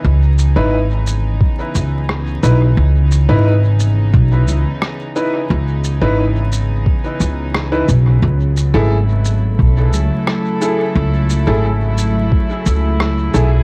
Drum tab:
SH |-x-x-x-x|-x-x-x-x|-x-x-x-x|-x-x-x-x|
SD |------r-|------r-|------r-|------r-|
BD |----o---|----o---|----o---|----o---|

SH |-x-x-x-x|
SD |------r-|
BD |----o---|